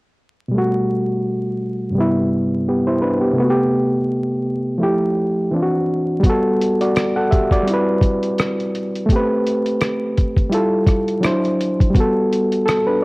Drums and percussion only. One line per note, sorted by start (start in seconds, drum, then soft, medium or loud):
6.23 kick medium
6.23 closed hi-hat medium
6.61 closed hi-hat medium
6.81 closed hi-hat medium
6.96 cross-stick loud
6.96 closed hi-hat medium
7.32 kick medium
7.32 closed hi-hat medium
7.51 kick medium
7.51 closed hi-hat soft
7.68 closed hi-hat medium
8.01 kick medium
8.01 closed hi-hat medium
8.23 closed hi-hat soft
8.38 cross-stick loud
8.38 closed hi-hat medium
8.60 closed hi-hat soft
8.75 closed hi-hat medium
8.95 closed hi-hat soft
9.09 kick medium
9.09 closed hi-hat medium
9.47 closed hi-hat medium
9.66 closed hi-hat medium
9.81 cross-stick loud
9.81 closed hi-hat medium
10.18 kick medium
10.18 closed hi-hat medium
10.37 kick medium
10.37 closed hi-hat soft
10.52 closed hi-hat medium
10.87 kick loud
10.87 cross-stick soft
10.87 closed hi-hat medium
11.08 closed hi-hat soft
11.23 cross-stick loud
11.23 closed hi-hat medium
11.45 closed hi-hat soft
11.61 closed hi-hat medium
11.80 kick loud
11.80 closed hi-hat soft
11.95 kick loud
11.95 closed hi-hat medium
12.33 closed hi-hat medium
12.52 closed hi-hat soft
12.68 cross-stick loud
12.68 closed hi-hat medium